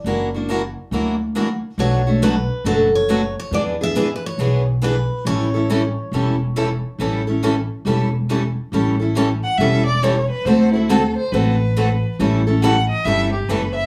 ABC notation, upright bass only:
X:1
M:4/4
L:1/8
Q:"Swing" 1/4=138
K:Amix
V:1 name="Upright bass" clef=bass
F,,,4 D,,4 | B,,,4 F,,,4 | E,,4 B,,,4 | A,,,4 E,,,4 |
A,,,4 E,,,4 | A,,,4 E,,,4 | D,,4 A,,,4 | A,,,4 G,,,2 F,,,2 |]